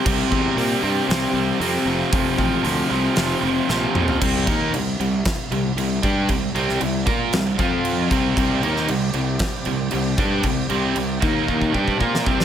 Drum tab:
CC |x---------------|----------------|x-x-x-x-x-x-x-x-|x-x-x-x-x-x-x-x-|
HH |----o---o---o---|o---o---o-------|----------------|----------------|
SD |--------o-------|--------o---o---|--------o-------|---o----o-------|
T2 |----------------|--------------o-|----------------|----------------|
FT |----------------|---------------o|----------------|----------------|
BD |o-o-------------|o-o-------------|o-o-----o-----o-|o-----o---o---o-|

CC |x-x-x-x-x-x-x-x-|x-x-x-x---------|
HH |----------------|----------------|
SD |---o----o-------|-------------o-o|
T2 |----------------|----------------|
FT |----------------|----------------|
BD |o-------o-----o-|o-----o-ooooo-o-|